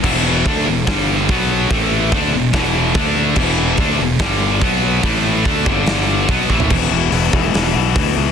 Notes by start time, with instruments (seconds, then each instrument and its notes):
0.03 fingered electric bass E1, distorted electric guitar E2 B2 E3, kick, crash
0.45 fingered electric bass D2, distorted electric guitar D3 A3 D4, kick, open hi-hat
0.66 fingered electric bass E1, distorted electric guitar E2 B2
0.87 fingered electric bass G1, distorted electric guitar G2 D3 G3, kick, snare, open hi-hat
1.29 fingered electric bass B1, distorted electric guitar B2 F#3 B3, kick, open hi-hat
1.70 fingered electric bass A1, distorted electric guitar A2 E3 A3, kick, open hi-hat
2.12 fingered electric bass D2, distorted electric guitar D3 A3 D4, kick, open hi-hat
2.33 fingered electric bass E1, distorted electric guitar E2 B2
2.53 fingered electric bass E1, distorted electric guitar E2 B2 E3, kick, snare, open hi-hat
2.94 fingered electric bass D2, distorted electric guitar D3 A3 D4, kick, open hi-hat
3.36 fingered electric bass E1, distorted electric guitar E2 B2 E3, kick, crash
3.77 fingered electric bass D2, distorted electric guitar D3 A3 D4, kick, open hi-hat
3.99 fingered electric bass E1, distorted electric guitar E2 B2
4.19 fingered electric bass G1, distorted electric guitar G2 D3 G3, kick, snare, open hi-hat
4.61 fingered electric bass B1, distorted electric guitar B2 F#3 B3, kick, open hi-hat
5.03 fingered electric bass A1, distorted electric guitar A2 E3 A3, kick, open hi-hat
5.45 fingered electric bass D2, distorted electric guitar D3 A3 D4, kick, open hi-hat
5.66 fingered electric bass G1, distorted electric guitar G2 D3 G3, kick
5.86 snare, open hi-hat
6.29 fingered electric bass B1, distorted electric guitar B2 F#3 B3, kick, open hi-hat
6.50 fingered electric bass A1, distorted electric guitar A2 E3 A3, kick
6.60 floor tom
6.69 fingered electric bass E1, distorted electric guitar E2 B2 E3, kick, crash
6.91 fingered electric bass E1, distorted electric guitar E2 B2 E3
7.12 fingered electric bass E1, distorted electric guitar E2 B2 E3, open hi-hat
7.33 fingered electric bass E1, distorted electric guitar E2 B2 E3, kick
7.54 fingered electric bass E1, distorted electric guitar E2 B2 E3, snare, open hi-hat
7.74 fingered electric bass B1, distorted electric guitar E2 B2 E3
7.95 fingered electric bass D2, distorted electric guitar E2 B2 E3, kick, open hi-hat
8.16 fingered electric bass C#2, distorted electric guitar E2 B2 E3